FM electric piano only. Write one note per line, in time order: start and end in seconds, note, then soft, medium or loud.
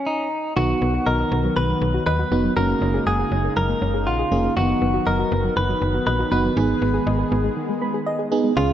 0.57 1.38 B3 medium
0.57 1.38 D#4 medium
0.57 1.38 F#4 medium
2.32 2.52 B3 medium
2.32 2.52 D#4 medium
2.32 2.52 F#4 medium
2.57 3.38 A#3 medium
2.57 3.38 C#4 medium
2.57 3.38 F#4 medium
4.32 4.52 A#3 medium
4.32 4.52 C#4 medium
4.32 4.52 G#4 medium
4.57 5.38 B3 medium
4.57 5.38 D#4 medium
4.57 5.38 F#4 medium
6.32 6.52 B3 medium
6.32 6.52 D#4 medium
6.32 6.52 F#4 medium
6.57 7.38 B3 medium
6.57 7.38 D#4 medium
6.57 7.38 G#4 medium
7.82 8.05 B5 medium
8.06 8.53 D#5 medium
8.32 8.52 B3 medium
8.32 8.52 D#4 medium
8.32 8.52 G#4 loud
8.57 8.73 C#4 medium
8.57 8.73 G#4 medium
8.57 8.73 F5 medium